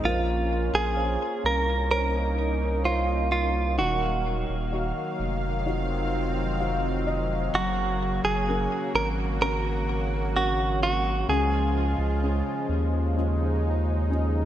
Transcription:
0.04 sub bass A#1, analog synth pad A#3 C#4 F4, grand piano A#3, clean electric guitar F4
0.73 sub bass A#1, clean electric guitar G#4
0.96 grand piano A#4 C5 C#5
1.44 sub bass C2, clean electric guitar A#4
1.90 analog synth pad D#4, grand piano A#4 C5 C#5, clean electric guitar A#4
2.84 clean electric guitar F4, grand piano A#4 C5 C#5
3.32 clean electric guitar F4
3.78 sub bass D#1, grand piano D#3, analog synth pad D#3 F#3 F5, clean electric guitar F#4
4.49 sub bass D#1
4.72 grand piano D#4 F#4 F5
5.19 sub bass F1
5.66 analog synth pad C4, grand piano D#4 F4 F#4
6.60 grand piano D#4 F4 F#4 F5
7.07 grand piano D#5
7.52 sub bass F#1, analog synth pad C#3 A#3 F#4, grand piano F#3, clean electric guitar F#4
8.24 sub bass F#1, clean electric guitar G#4
8.48 grand piano C#4 F#4 A#4
8.95 sub bass G#1, clean electric guitar A#4
9.42 grand piano C#4 F#4 A#4, clean electric guitar A#4
10.35 grand piano C#4 F#4 A#4, clean electric guitar F#4
10.83 clean electric guitar F#4
11.28 sub bass C#2, grand piano C#3, analog synth pad F3 G#3 F4, clean electric guitar G#4
11.99 sub bass C#2
12.23 grand piano C#4 F4 G#4
12.69 sub bass D#2
13.16 grand piano C#4 F4 G#4, analog synth pad D#4
14.10 grand piano C#4 F4 G#4

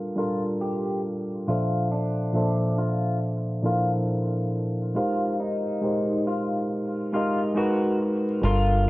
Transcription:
Already playing: reed electric piano G3 D4 F4 A4 A#4
0.15 reed electric piano G3 D4 F4 A4 A#4, clean electric guitar F4
0.61 clean electric guitar G4
1.47 reed electric piano A#2 F3 D4 A4 C5 E5, clean electric guitar F4
1.91 clean electric guitar D4
2.33 reed electric piano A#2 F3 D4 A4 C5 E5
2.78 clean electric guitar F4
3.62 reed electric piano A#2 F3 D4 E4 A4 A#4, clean electric guitar F4
3.72 reed electric piano C5
4.94 reed electric piano G#3 D#4 G4 A#4 C5, clean electric guitar F4
5.40 clean electric guitar D#4
5.81 reed electric piano G#3 D#4 G4 A#4 C5
6.27 clean electric guitar F4
7.13 reed electric piano G#3 D#4 G4 A#4 D#5, clean electric guitar F4
7.55 reed electric piano G#3 D#4 F#4 A#4 B4, clean electric guitar F#4
8.42 fingered electric bass G1, reed electric piano G3 D4 F4 A4 A#4, clean electric guitar F4

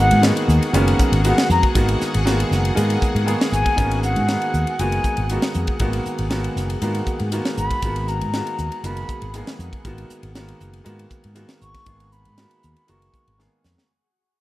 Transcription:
Already playing: fretless electric bass G#1, grand piano D#3 G#3 A#3 B3 F#4, ambient pad F#4 G#4 F#5
0.00 flute F#5
0.11 fretless electric bass G#2, ride
0.22 grand piano D#3 G#3 A#3 B3 D#4, snare, hi-hat pedal, ride
0.37 ride
0.48 fretless electric bass D#2, hi-hat pedal
0.63 ride
0.73 fretless electric bass F#1, grand piano D#3 G#3 A#3 B3 C#4, hi-hat pedal, ride
0.88 ride
0.99 kick, hi-hat pedal
1.12 fretless electric bass G#1, ride
1.24 grand piano D#3 G#3 A#3 B3 F#4, flute F#5, hi-hat pedal, ride
1.38 snare, ride
1.50 fretless electric bass F2, flute A#5, hi-hat pedal
1.63 kick, ride
1.74 fretless electric bass G#1, grand piano D#3 G#3 A#3 B3 F#4, kick, hi-hat pedal, ride
1.89 ride
2.01 muted fretless electric bass stroke, snare, hi-hat pedal
2.14 fretless electric bass G#1, ride
2.25 grand piano D#3 G#3 A#3 B3 F#4, snare, hi-hat pedal, ride
2.40 ride
2.51 fretless electric bass F#1, snare, hi-hat pedal
2.65 ride
2.75 fretless electric bass G#2, grand piano D#3 G#3 A#3 B3 G#4, hi-hat pedal, ride
2.90 ride
3.02 kick, hi-hat pedal
3.15 fretless electric bass G#2, ride
3.25 grand piano D#3 G#3 A#3 B3 G#4, hi-hat pedal, ride
3.41 snare, ride
3.52 fretless electric bass G#1, flute G#5, hi-hat pedal
3.66 kick, ride
3.76 fretless electric bass G#1, grand piano D#3 G#3 A#3 B3 C#4, kick, hi-hat pedal, ride
3.91 ride
4.03 flute F#5, hi-hat pedal
4.16 fretless electric bass G#2, ride
4.28 grand piano D#3 G#3 A#3 B3 G#4, snare, hi-hat pedal, ride
4.42 ride
4.54 fretless electric bass D#2, hi-hat pedal
4.67 ride
4.79 fretless electric bass F#1, grand piano D#3 G#3 A#3 B3 F#4, flute G#5, hi-hat pedal, ride
4.92 ride
5.04 kick, hi-hat pedal
5.17 fretless electric bass G#1, ride
5.29 grand piano D#3 G#3 A#3 B3 F#4, hi-hat pedal, ride
5.42 snare, ride
5.54 fretless electric bass F2, hi-hat pedal
5.67 kick, ride
5.79 fretless electric bass G#1, grand piano D#3 G#3 A#3 B3 F#4, kick, hi-hat pedal, ride
5.93 ride
6.06 muted fretless electric bass stroke, hi-hat pedal
6.18 fretless electric bass G#1, ride
6.30 grand piano D#3 G#3 A#3 B3 F#4, snare, hi-hat pedal, ride
6.44 ride
6.56 fretless electric bass F#1, snare, hi-hat pedal
6.70 ride
6.82 fretless electric bass G#2, grand piano D#3 G#3 A#3 B3 F#4, hi-hat pedal, ride
6.95 ride
7.06 kick, hi-hat pedal
7.20 fretless electric bass G#2, ride
7.32 grand piano D#3 G#3 A#3 B3 F#4, hi-hat pedal, ride
7.45 snare, ride
7.57 fretless electric bass G#1, flute B5, hi-hat pedal
7.71 kick, ride
7.82 fretless electric bass G#1, grand piano D#3 G#3 A#3 B3 F#4, kick, hi-hat pedal, ride
7.96 ride
8.08 flute A#5, hi-hat pedal
8.21 fretless electric bass G#2, ride
8.33 grand piano D#3 G#3 A#3 B3 F#4, snare, hi-hat pedal, ride
8.47 ride
8.58 fretless electric bass D#2, hi-hat pedal
8.72 ride
8.84 fretless electric bass F#1, grand piano D#3 G#3 A#3 B3 F#4, flute B5, hi-hat pedal, ride
8.97 ride
9.09 kick, hi-hat pedal
9.22 fretless electric bass G#1, ride
9.34 grand piano D#3 G#3 A#3 B3 G#4, hi-hat pedal, ride
9.47 snare, ride
9.59 fretless electric bass F2, hi-hat pedal
9.73 kick, ride
9.85 fretless electric bass G#1, grand piano D#3 G#3 A#3 B3 F#4, kick, hi-hat pedal, ride
9.98 ride
10.10 muted fretless electric bass stroke, hi-hat pedal
10.23 fretless electric bass G#1, ride
10.35 grand piano D#3 G#3 A#3 B3 F#4, snare, hi-hat pedal, ride
10.48 ride
10.60 fretless electric bass F#1, hi-hat pedal
10.73 ride
10.84 fretless electric bass G#2, grand piano D#3 G#3 A#3 B3 F#4, hi-hat pedal, ride
10.99 ride
11.10 kick, hi-hat pedal
11.24 fretless electric bass G#2, ride
11.35 grand piano D#3 G#3 A#3 B3 F#4, hi-hat pedal, ride
11.49 snare, ride
11.61 fretless electric bass G#1, flute C#6, hi-hat pedal
11.74 kick, snare, ride
11.86 fretless electric bass G#1, grand piano D#3 G#3 A#3 B3 G#4, kick, hi-hat pedal, ride
12.00 ride
12.12 flute B5, hi-hat pedal
12.25 fretless electric bass G#2, ride
12.37 grand piano D#3 G#3 A#3 B3 F#4, snare, hi-hat pedal, ride
12.51 ride
12.63 fretless electric bass D#2, hi-hat pedal
12.76 ride
12.87 fretless electric bass F#1, grand piano D#3 G#3 A#3 B3 F#4, flute C#6, hi-hat pedal, ride
13.02 ride
13.14 kick, hi-hat pedal
13.28 fretless electric bass G#1, ride
13.38 grand piano D#3 G#3 A#3 B3 G#4, snare, hi-hat pedal
13.64 fretless electric bass F2, snare, hi-hat pedal
13.78 snare

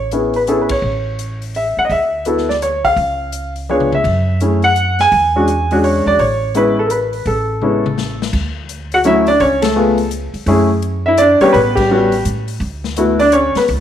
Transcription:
Already playing: upright bass A1
0.11 grand piano B3 C#4 E4 G#4, closed hi-hat
0.34 grand piano B4, open hi-hat
0.47 grand piano B3 C#4 E4 G#4 A4, closed hi-hat
0.61 grand piano B4
0.69 grand piano C#5, kick, ride
0.82 upright bass A1
1.19 closed hi-hat
1.42 open hi-hat
1.55 grand piano E5, open hi-hat
1.77 grand piano F#5, muted upright bass stroke
1.85 grand piano D#5
1.89 upright bass D2, grand piano E5, open hi-hat
2.25 grand piano B3 E4 F#4 A4, closed hi-hat
2.38 snare
2.49 grand piano D5, snare
2.62 grand piano C#5, closed hi-hat
2.85 grand piano F5, kick, open hi-hat
2.96 upright bass C#2, open hi-hat
3.32 closed hi-hat
3.56 open hi-hat
3.69 grand piano B3 D4 F4 G#4 C#5, high tom
3.80 mid tom
3.92 grand piano E5, mid tom
4.04 upright bass F#2, kick, crash
4.40 grand piano A3 C#4 E4 G#4, closed hi-hat
4.62 grand piano F#5, open hi-hat
4.76 closed hi-hat
4.99 grand piano G#5, snare, open hi-hat
5.12 upright bass E2, open hi-hat
5.36 grand piano G#3 C#4 D4 F#4
5.48 closed hi-hat
5.71 grand piano G#3 C#4 D4 F#4, open hi-hat
5.84 grand piano C#5, open hi-hat
6.06 upright bass E2, grand piano D5
6.19 upright bass A1, grand piano C#5, open hi-hat
6.55 grand piano G#3 B3 C#4 E4 B4, closed hi-hat
6.79 grand piano A4
6.86 grand piano A#4, closed hi-hat
6.91 grand piano B4
7.13 open hi-hat
7.26 upright bass A1, grand piano A4, open hi-hat
7.61 grand piano G#3 B3 C#4 E4, mid tom
7.86 mid tom
7.98 snare
8.22 snare
8.33 upright bass D2, kick, crash
8.69 closed hi-hat
8.92 grand piano F#4 F#5, open hi-hat
9.04 grand piano F#3 A3 C#4 E4 E5, closed hi-hat
9.27 grand piano D4 D5, open hi-hat
9.40 upright bass C#2, grand piano C#4 C#5, open hi-hat
9.62 grand piano A3 A4, snare, ride
9.76 grand piano A3 B3 F4 G#4
9.98 open hi-hat
10.11 closed hi-hat
10.34 muted upright bass stroke, open hi-hat
10.46 upright bass F#2, grand piano A3 C#4 E4 G#4, open hi-hat
10.82 closed hi-hat
11.06 grand piano E4 E5
11.18 grand piano D4 D5, closed hi-hat
11.41 grand piano G3 B3 C#4 G4 C#5, muted upright bass stroke, open hi-hat
11.53 upright bass A1, grand piano B4, open hi-hat
11.57 grand piano B3
11.75 grand piano G3 G4, kick, crash
11.91 grand piano G3 B3 C#4 F#4
12.12 open hi-hat
12.25 upright bass A2, closed hi-hat
12.48 open hi-hat
12.60 upright bass D2, open hi-hat
12.84 snare
12.96 grand piano A3 B3 E4 F#4, closed hi-hat
13.19 grand piano D4 D5, open hi-hat
13.32 grand piano C#4 C#5, closed hi-hat
13.55 grand piano B3 B4, muted upright bass stroke, snare, open hi-hat
13.68 upright bass C#2, open hi-hat

